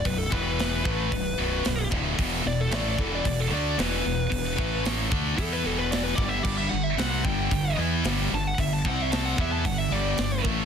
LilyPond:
<<
  \new Staff \with { instrumentName = "Lead electric guitar" } { \time 4/4 \key e \minor \tempo 4 = 112 b'16 a'16 b'2. r8 | r8 d''16 a'16 d''16 d''16 a'16 d''16 d''16 a'16 d''8 b'4~ | b'4 r4 a'16 b'16 a'16 b'16 d''16 b'16 d''16 e''16 | d''16 e''16 fis''16 e''16 fis''8 g''4 r4 a''16 fis''16 |
e''16 a''16 fis''16 e''16 a''16 fis''16 e''16 a''16 fis''16 e''16 d''4 r8 | }
  \new Staff \with { instrumentName = "Distorted electric guitar" } { \clef bass \time 4/4 \key e \minor <b,, fis,>8 <e, b, e>4 <a, e a>8 <b,, fis,>8 <b,, fis, b,>8 <b,, fis,>8 <d, a, d>8 | <e, b, e>8 <e, b,>8 <a, e a>8 <e, b, e>8 <e, b,>8 <d a d'>8 <e, b, e>8 <e, b,>8 | <e, b,>8 <a, e a>4 <d a d'>8 <e b e'>8 <e, b, e>4 <g, d g>8 | <g, d g>8 <g, d>8 <c g c'>8 <g, d g>8 <g, d>8 <e b e'>8 <g, d g>8 <g, d>8 |
<g, d>8 <c g c'>4 <e b e'>8 <g, d>8 <g, d g>8 <g, d>8 <a, e a>8 | }
  \new Staff \with { instrumentName = "Distorted electric guitar" } { \clef bass \time 4/4 \key e \minor <b,, fis,>8 <e, b, e>4 <a, e a>8 <b,, fis,>8 <b,, fis, b,>8 <b,, fis,>8 <d, a, d>8 | <e, b, e>8 <e, b,>8 <a, e a>8 <e, b, e>8 <e, b,>8 <d a d'>8 <e, b, e>8 <e, b,>8 | <e, b,>8 <a, e a>4 <d a d'>8 <e b e'>8 <e, b, e>4 <g, d g>8 | <g, d g>8 <g, d>8 <c g c'>8 <g, d g>8 <g, d>8 <e b e'>8 <g, d g>8 <g, d>8 |
<g, d>8 <c g c'>4 <e b e'>8 <g, d>8 <g, d g>8 <g, d>8 <a, e a>8 | }
  \new Staff \with { instrumentName = "Distorted electric guitar" } { \clef bass \time 4/4 \key e \minor r1 | r1 | r1 | <g, d g>8 <g, d>8 <c g c'>8 <g, d g>8 <g, d>8 <e b e'>8 <g, d g>8 <g, d>8 |
<g, d>8 <c g c'>4 <e b e'>8 <g, d>8 <g, d g>8 <g, d>8 <a, e a>8 | }
  \new Staff \with { instrumentName = "Fingered electric bass" } { \clef bass \time 4/4 \key e \minor b,,,8 e,,4 a,,8 b,,,8 b,,,8 b,,,8 d,,8 | e,,8 e,,8 a,,8 e,,8 e,,8 d,8 e,,8 e,,8 | e,,8 a,,4 d,8 e,8 e,,4 g,,8 | g,,8 g,,8 c,8 g,,8 g,,8 e,8 g,,8 g,,8 |
g,,8 c,4 e,8 g,,8 g,,8 g,,8 a,,8 | }
  \new DrumStaff \with { instrumentName = "Drums" } \drummode { \time 4/4 <hho bd>8 bd8 <hho sn>8 bd8 <hho bd>4 <hho sn>8 bd8 | <hho bd>4 <hho sn>8 bd8 <hho bd>4 <hho sn>4 | <hho bd>8 bd8 <hho sn>8 bd8 <hho bd>4 <hho sn>8 bd8 | <cymc bd>4 <hho sn>8 bd8 <hho bd>4 <hho sn>4 |
<hho bd>8 bd8 <hho sn>8 bd8 <hho bd>4 <hho sn>8 bd8 | }
>>